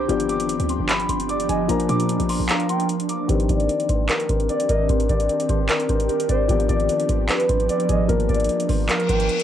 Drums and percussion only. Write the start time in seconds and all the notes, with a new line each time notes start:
0.09 closed hi-hat
0.20 closed hi-hat
0.29 closed hi-hat
0.40 closed hi-hat
0.49 closed hi-hat
0.60 closed hi-hat
0.69 closed hi-hat
0.89 clap, closed hi-hat
1.00 closed hi-hat
1.09 closed hi-hat
1.20 closed hi-hat
1.29 closed hi-hat
1.40 closed hi-hat
1.49 closed hi-hat
1.69 closed hi-hat
1.80 closed hi-hat
1.89 closed hi-hat
2.00 closed hi-hat
2.09 closed hi-hat
2.20 closed hi-hat
2.29 open hi-hat
2.49 clap, closed hi-hat
2.60 closed hi-hat
2.69 closed hi-hat
2.80 closed hi-hat
2.89 closed hi-hat
3.00 closed hi-hat
3.09 closed hi-hat
3.29 kick, closed hi-hat
3.40 closed hi-hat
3.49 kick, closed hi-hat
3.60 closed hi-hat
3.69 closed hi-hat
3.80 closed hi-hat
3.89 kick, closed hi-hat
4.09 clap, closed hi-hat
4.20 closed hi-hat
4.29 kick, closed hi-hat
4.40 closed hi-hat
4.49 closed hi-hat
4.60 closed hi-hat
4.69 kick, closed hi-hat
4.89 kick, closed hi-hat
5.00 closed hi-hat
5.09 kick, closed hi-hat
5.20 closed hi-hat
5.29 closed hi-hat
5.40 closed hi-hat
5.49 kick, closed hi-hat
5.69 clap, closed hi-hat
5.80 closed hi-hat
5.89 kick, closed hi-hat
6.00 closed hi-hat
6.09 closed hi-hat
6.20 closed hi-hat
6.29 kick, closed hi-hat
6.49 kick, closed hi-hat
6.60 closed hi-hat
6.69 kick, closed hi-hat
6.80 closed hi-hat
6.89 closed hi-hat
7.00 closed hi-hat
7.09 kick, closed hi-hat
7.29 clap, closed hi-hat
7.40 closed hi-hat
7.49 kick, closed hi-hat
7.60 closed hi-hat
7.69 closed hi-hat
7.80 closed hi-hat
7.89 kick, closed hi-hat
8.09 kick, closed hi-hat
8.20 closed hi-hat
8.29 kick, closed hi-hat
8.34 closed hi-hat
8.40 closed hi-hat
8.44 closed hi-hat
8.49 closed hi-hat
8.60 closed hi-hat
8.69 kick, open hi-hat
8.89 clap, closed hi-hat
9.00 closed hi-hat
9.09 kick, closed hi-hat
9.20 closed hi-hat
9.29 closed hi-hat
9.40 closed hi-hat